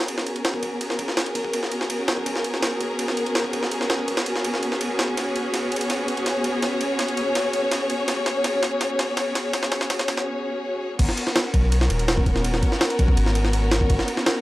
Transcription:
Already playing: B3 C#4 F#4 G#4 A#4
0.08 ride
0.18 snare
0.26 ride
0.36 ride
0.45 snare, ride
0.54 kick
0.63 kick, ride
0.81 ride
0.90 snare
0.99 kick, ride
1.08 snare
1.17 snare, ride
1.26 ride
1.35 kick, ride
1.45 kick
1.53 ride
1.63 snare
1.72 ride
1.81 snare
1.90 ride
2.08 snare, ride
2.17 kick
2.26 kick, ride
2.36 snare
2.44 ride
2.54 snare
2.63 snare, ride
2.81 kick, ride
2.99 ride
3.08 snare
3.17 ride
3.26 ride
3.35 snare, ride
3.44 kick
3.53 kick, ride
3.63 snare
3.71 ride
3.81 snare
3.90 snare, ride
3.99 kick
4.08 kick, ride
4.17 snare, ride
4.26 ride
4.36 snare
4.45 ride
4.54 snare
4.63 ride
4.72 snare
4.81 ride
4.99 snare, ride
5.08 kick
5.17 C#5, snare, ride
5.36 ride
5.54 snare, ride
5.72 ride
5.76 ride
5.81 ride
5.90 snare, ride
6.08 ride
6.17 ride
6.26 snare, ride
6.44 ride
6.62 snare, ride
6.81 ride
6.99 snare, ride
7.08 ride
7.17 ride
7.35 snare, ride
7.53 ride
7.71 snare, ride
7.90 ride
8.08 snare, ride
8.26 snare, ride
8.44 snare, ride
8.63 snare, ride
8.81 snare, ride
8.99 snare, ride
9.17 snare, ride
9.35 snare, ride
9.53 snare, ride
9.63 snare
9.72 snare, ride
9.81 snare
9.90 snare, ride
9.99 snare, ride
10.08 snare, ride
10.18 snare
10.99 G#1 B3 C#4 F#4 A#4, kick, crash, ride
11.09 snare
11.17 ride
11.27 snare
11.36 snare, ride
11.54 B1, kick, ride
11.72 ride
11.81 snare
11.90 D#1, ride
11.99 ride
12.08 snare, ride
12.17 kick
12.26 kick, ride
12.36 snare
12.44 ride
12.54 snare
12.63 kick, ride
12.72 snare
12.81 snare, ride
12.90 ride
12.99 B1, kick, ride
13.08 kick
13.17 G#1, ride
13.26 snare
13.35 ride
13.45 snare
13.53 ride
13.71 snare, ride
13.81 kick
13.90 G#1, kick, ride
13.99 snare
14.08 ride
14.17 snare
14.26 snare, ride

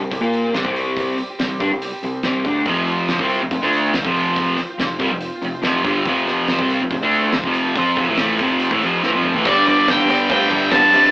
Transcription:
0.00 C2 G3 C4 G4
0.10 C2 C3 G3 C4 G4, kick, open hi-hat
0.21 A#2 G3 A#3 C4 F4 G4 A#4
0.33 open hi-hat
0.44 G3 C4 G4
0.53 C2 C3 G3 C4 G4, snare, open hi-hat
0.64 C2 C3 G3 C4, kick
0.76 C3 G3 C4, open hi-hat
0.80 G4
0.87 G3 C4 G4
0.97 C3 G3 C4 G4, kick, open hi-hat
1.18 C3 G3 C4, muted overdriven electric guitar stroke, muted picked electric bass stroke, open hi-hat
1.22 G4
1.30 G3 C4 G4
1.39 C2 C3 G3 C4 G4, snare, open hi-hat
1.60 G2 C3 G3 C4 D4, kick, open hi-hat
1.64 G4
1.70 C2 C3 G3 C4 G4
1.75 G3
1.81 C3 G3 C4 G4, open hi-hat
1.92 G3 C4 G4
2.03 C2 C3 G3, open hi-hat
2.13 G3 C4 G4
2.23 C2 C3 G3 C4 G4, snare, open hi-hat
2.44 D2 C3 D3 G3 A3 C4 D4, kick, open hi-hat
2.49 G4
2.55 G3 C4 G4
2.66 F1 F2 C3 F3 C4 F4 C5, kick, open hi-hat
2.87 F3 C4 F4 C5, open hi-hat
2.98 C4 F4 C5
3.08 F3 C4 F4 C5, snare, open hi-hat
3.19 C2 C3 G3 C4, kick
3.29 F3 C4 F4 C5, open hi-hat
3.40 F1 F2 C3 F4 C5
3.44 C4
3.51 F1 F2 C3 F3 C4 F4 C5, kick, open hi-hat
3.62 D2 D3 A3 D4 F4 C5
3.66 C4
3.73 open hi-hat
3.84 C4 F4 C5
3.94 F1 F2 C3 F3 C4 F4, snare, open hi-hat
3.98 C5
4.05 F1 F2 C3 F3, kick
4.16 F3 C4 F4 C5, open hi-hat
4.27 C4 F4 C5
4.36 F3 C4 F4 C5, kick, open hi-hat
4.58 F3 C4 F4, muted overdriven electric guitar stroke, muted picked electric bass stroke, snare, open hi-hat
4.62 C5
4.70 C4 F4 C5
4.78 F1 F2 C3 F3 C4 F4, snare, open hi-hat
4.83 C5
4.99 C2 C3 F3 G3 C4, kick, open hi-hat
5.03 F4 C5
5.10 F1 F2 C3 F4 C5
5.15 C4
5.21 F3 C4, open hi-hat
5.25 F4 C5
5.34 C4 F4 C5
5.42 F1 F2 C3, open hi-hat
5.54 C4 F4 C5
5.62 F1 F2 C3 F3 C4, snare, open hi-hat
5.66 F4 C5
5.84 G1 G2 D3 F3 G3 C4 F4, kick, open hi-hat
5.88 C5
5.96 C4 F4 C5
6.05 F1 F2 C3 F3 C4 F4, kick, open hi-hat
6.09 C5
6.27 F3 C4 F4 C5, snare, open hi-hat
6.38 C4 F4 C5
6.48 F3 C4 F4 C5, snare, open hi-hat
6.58 C2 C3 G3 C4, kick
6.69 F3 C4 F4 C5, open hi-hat
6.80 F1 F2 C3 F4 C5
6.84 C4
6.90 F1 F2 C3 F3 C4 F4 C5, kick, open hi-hat
7.01 D2 D3 A3 C4 D4 F4 C5
7.12 open hi-hat
7.22 C4 F4 C5
7.33 F1 F2 C3 F3 C4 F4 C5, snare, open hi-hat
7.44 F1 F2 C3 F3, kick
7.53 F3 C4 F4 C5, open hi-hat
7.65 C4 F4 C5
7.75 F2 F3 C4 F4 C5, kick, open hi-hat
7.97 F1 F2 C3 F3 C4 F4 C5, kick, open hi-hat
8.08 A1 A2 E3 C4 F4 C5
8.17 A1 A2 E3 F3 A3 C4 F4 C5, snare, open hi-hat
8.39 F1 F2 C3 F3 C4 F4, kick, open hi-hat
8.44 C5
8.50 C4 F4 C5
8.60 F3 C4 F4 C5, open hi-hat
8.70 A1 A2 E3 C4 F4 C5, kick
8.82 F1 F2 C3 F3, open hi-hat
8.92 C4 F4 C5
9.02 A1 A2 E3 F3 C4 F4 C5, snare
9.14 F1 F2 C3 F3, high tom
9.23 F3 C4 F4 C5, mid tom
9.34 A1 A2 E3 F4 C5, floor tom
9.38 C4
9.45 G1 G2 D3 G3 B3 D4 G4 B4 D5, kick, crash, cowbell
9.66 G1 G2 D3 G3 G4 B4 D5, open hi-hat, cowbell
9.77 G3 B3 D4 G4
9.87 G1 G2 D3 G3 B3 D4 G4 B4 F5 G5, snare, open hi-hat, cowbell
10.09 G1 G2 D3 G3 G4 B4 D5, open hi-hat, cowbell
10.20 G3 B3 D4 G4
10.29 D2 G2 D3 G3 G4 G5, kick, open hi-hat, cowbell
10.34 B4 F5
10.41 G3 B3 D4 G4
10.50 G1 G2 D3 G3 B3 D4 G4, kick, open hi-hat
10.55 G4 B4 E5
10.71 G1 G2 D3 G3 B3 D4 G4 B4 A5, snare, open hi-hat, cowbell
10.75 F5
10.93 F2 G2 D3 G3 B3 D4 G4 B4 E5, open hi-hat
11.05 G3 B3 D4 G4

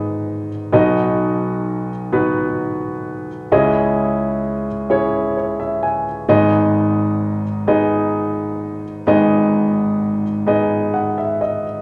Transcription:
Already playing: G#1 G#2 B3 D#4 G#4 D#5
0.72 B1 B2 B3 D#4 F#4 D#5
2.12 B3 D#4 F#4 B4
3.52 C#2 C#3 C#4 E4 G#4 D#5
4.90 C#4 E4 G#4 C#5
5.37 C#5
5.60 E5
5.83 G#5
6.29 G#1 G#2 B3 D#4 G#4 D#5
7.67 B3 D#4 G#4 D#5
9.07 G#1 G#2 B3 D#4 G#4 D#5
10.46 B3 D#4 G#4 D#5
10.94 F#5
11.18 E5
11.41 D#5

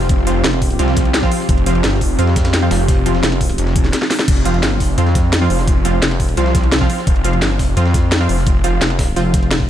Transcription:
Already playing: F3 C4 F4 G4
0.01 snare
0.09 F1, kick, closed hi-hat, ride
0.27 F3 C4 F4, closed hi-hat, ride
0.44 F1, snare, closed hi-hat, ride
0.53 ride
0.62 kick, open hi-hat, ride
0.70 ride
0.79 C2 F3 C4 F4, closed hi-hat, ride
0.88 snare
0.97 kick, snare, closed hi-hat, ride
1.05 ride
1.14 snare, closed hi-hat, ride
1.23 F3 C4 F4, kick, snare
1.32 open hi-hat, ride
1.40 snare
1.49 F1, kick, closed hi-hat, ride
1.58 ride
1.66 F3 C4 F4, closed hi-hat, ride
1.75 ride
1.84 G1, snare, closed hi-hat, ride
2.01 F1, kick, open hi-hat
2.19 F2 F3 C4 F4, closed hi-hat, ride
2.27 snare
2.36 kick, snare, closed hi-hat, ride
2.45 snare, ride
2.54 snare, closed hi-hat, ride
2.62 F3 C4 F4
2.71 F1, snare, open hi-hat, ride
2.88 F1, kick, closed hi-hat, open hi-hat
3.06 F3 C4 F4, closed hi-hat, ride
3.15 snare
3.23 F1, snare, closed hi-hat, ride
3.32 snare, ride
3.41 kick, open hi-hat, ride
3.50 snare, ride
3.58 F1, closed hi-hat, ride
3.67 snare
3.76 kick, closed hi-hat, ride
3.84 snare, ride
3.93 snare, closed hi-hat, ride
4.02 snare
4.11 snare, open hi-hat, ride
4.19 snare
4.28 F1, kick, closed hi-hat, crash, ride
4.37 ride
4.45 F3 C4 F4, closed hi-hat, ride
4.54 ride
4.63 G1, snare, closed hi-hat, ride
4.80 F1, kick, open hi-hat
4.98 F2 F3 C4 F4, closed hi-hat, ride
5.06 snare
5.15 kick, snare, closed hi-hat, ride
5.33 snare, closed hi-hat, ride
5.41 F3 C4 F4
5.50 F1, open hi-hat, ride
5.59 snare
5.68 F1, kick, closed hi-hat, ride
5.85 F3 C4 F4, closed hi-hat, ride
6.02 F1, snare, closed hi-hat, ride
6.11 snare, ride
6.20 kick, open hi-hat, ride
6.29 ride
6.37 C2 F3 C4 F4, closed hi-hat, ride
6.46 snare
6.55 kick, snare, closed hi-hat, ride
6.63 ride
6.72 snare, closed hi-hat, ride
6.81 F3 C4 F4, kick, snare
6.90 open hi-hat, ride
6.98 snare
7.07 F1, kick, closed hi-hat, ride
7.16 ride
7.24 F3 C4 F4, closed hi-hat, ride
7.33 ride
7.42 G1, snare, closed hi-hat, ride
7.59 F1, kick, open hi-hat
7.77 F2 F3 C4 F4, closed hi-hat, ride
7.86 snare
7.94 kick, snare, closed hi-hat, ride
8.12 snare, closed hi-hat, ride
8.20 F3 C4 F4
8.29 F1, open hi-hat, ride
8.38 snare
8.47 F1, kick, closed hi-hat, ride
8.64 F3 C4 F4, closed hi-hat, ride
8.81 F1, snare, closed hi-hat, ride
8.90 snare, ride
8.99 kick, snare, open hi-hat, ride
9.16 F1 F3 C4 F4, closed hi-hat, open hi-hat
9.34 kick, snare, closed hi-hat, ride
9.43 ride
9.51 snare, closed hi-hat, ride
9.60 kick, snare

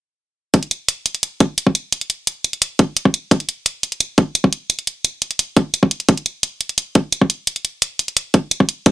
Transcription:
0.54 kick, closed hi-hat
0.63 closed hi-hat
0.71 closed hi-hat
0.88 closed hi-hat
1.06 closed hi-hat
1.15 closed hi-hat
1.23 closed hi-hat
1.40 kick, closed hi-hat
1.58 closed hi-hat
1.67 kick
1.75 closed hi-hat
1.92 closed hi-hat
2.01 closed hi-hat
2.10 closed hi-hat
2.27 closed hi-hat
2.44 closed hi-hat
2.53 closed hi-hat
2.62 closed hi-hat
2.79 kick, closed hi-hat
2.97 closed hi-hat
3.05 kick
3.14 closed hi-hat
3.31 kick, closed hi-hat
3.40 closed hi-hat
3.49 closed hi-hat
3.66 closed hi-hat
3.83 closed hi-hat
3.92 closed hi-hat
4.00 closed hi-hat
4.18 kick, closed hi-hat
4.35 closed hi-hat
4.44 kick
4.53 closed hi-hat
4.70 closed hi-hat
4.79 closed hi-hat
4.87 closed hi-hat
5.05 closed hi-hat
5.22 closed hi-hat
5.31 closed hi-hat
5.39 closed hi-hat
5.57 kick, closed hi-hat
5.74 closed hi-hat
5.83 kick
5.91 closed hi-hat
6.00 closed hi-hat
6.09 kick, closed hi-hat
6.17 closed hi-hat
6.26 closed hi-hat
6.43 closed hi-hat
6.61 closed hi-hat
6.69 closed hi-hat
6.78 closed hi-hat
6.95 kick, closed hi-hat
7.12 closed hi-hat
7.22 kick
7.30 closed hi-hat
7.47 closed hi-hat
7.56 closed hi-hat
7.65 closed hi-hat
7.82 closed hi-hat
7.99 closed hi-hat
8.08 closed hi-hat
8.17 closed hi-hat
8.34 kick, closed hi-hat
8.51 closed hi-hat
8.60 kick
8.69 closed hi-hat
8.86 kick, closed hi-hat

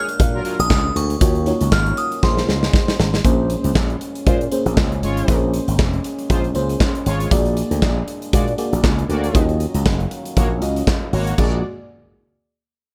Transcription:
Already playing: G#3 A#3 D4 F6
0.09 closed hi-hat
0.20 A#2, kick, closed hi-hat
0.34 F#3 F4 A#4
0.45 F#3 F4 A#4, closed hi-hat
0.59 A#1 D#6, closed hi-hat
0.70 C#2, kick, snare, clap
0.96 D2 C#6, closed hi-hat
1.10 closed hi-hat
1.21 D#2 D#3 F#3 A#3 C#4 D#4 F4 F#4 C#5 F5, kick, closed hi-hat
1.35 closed hi-hat
1.46 A#3 D#4 F4 F#4 C#5, closed hi-hat
1.61 C#2, closed hi-hat
1.72 G#1 F6, kick, snare, clap
1.86 closed hi-hat
1.97 D#6, closed hi-hat
2.12 closed hi-hat
2.22 A#1 G#3 A#3 C#4 F4 G#4 C5 C6, kick, snare
2.37 snare
2.48 C#2, snare
2.63 snare
2.73 kick, snare
2.88 snare
2.99 G#1, snare
3.14 snare
3.24 A#1 G#3 A#3 C#4 G#4 C5, kick, closed hi-hat
3.50 closed hi-hat
3.64 C#2, closed hi-hat
3.75 A#1, kick, snare, clap
3.90 closed hi-hat
4.01 closed hi-hat
4.15 closed hi-hat
4.26 A#2 G#3 F4 C5, kick, closed hi-hat
4.41 closed hi-hat
4.51 A#3 C#4 G#4 C5, closed hi-hat
4.66 A#1, closed hi-hat
4.77 C#2, kick, snare, clap
4.92 closed hi-hat
5.02 G#1 G#3 F4 C#5, closed hi-hat
5.17 closed hi-hat
5.28 A#1 A#3 C#4 G#4 C5, kick, closed hi-hat
5.54 closed hi-hat
5.68 G#1, closed hi-hat
5.79 F1, kick, snare, clap
5.93 closed hi-hat
6.04 closed hi-hat
6.19 closed hi-hat
6.30 A#1 G#3 F4 C5, kick, closed hi-hat
6.44 closed hi-hat
6.55 C#2 A#3 C#4 G#4 C5, closed hi-hat
6.69 closed hi-hat
6.80 kick, snare, clap
6.95 closed hi-hat
7.06 G#1 G#3 F4 C#5, closed hi-hat
7.20 closed hi-hat
7.31 A#1 A#3 D4 F#4 G#4 D5, kick, closed hi-hat
7.45 closed hi-hat
7.57 closed hi-hat
7.71 D2, closed hi-hat
7.82 A#1, kick, snare, clap
8.08 closed hi-hat
8.22 closed hi-hat
8.33 A#2 G#3 F#4 D5, kick, closed hi-hat
8.48 closed hi-hat
8.58 A#3 F#4 G#4 D5, closed hi-hat
8.73 A#1, closed hi-hat
8.84 C#2, kick, snare, clap
8.99 closed hi-hat
9.09 D2 A#3 F#4 D5, closed hi-hat
9.24 closed hi-hat
9.34 D#2 D#3 F#3 C#4 F4 F#4 D#5 F5, kick, closed hi-hat
9.49 closed hi-hat
9.60 closed hi-hat
9.74 C#2, closed hi-hat
9.86 F#1, kick, snare, clap
10.00 closed hi-hat
10.11 closed hi-hat
10.25 closed hi-hat
10.37 A#1 A#3 F#4 C#5, kick, closed hi-hat
10.62 C#2 C#4 F4 F#4 D#5, closed hi-hat
10.76 closed hi-hat
10.87 kick, snare, clap
11.13 G#1 A#3 F#4 C#5, open hi-hat
11.27 closed hi-hat
11.38 A#1 A#2 G#3 A#3 D4 F#4 G#4 D5, kick, crash

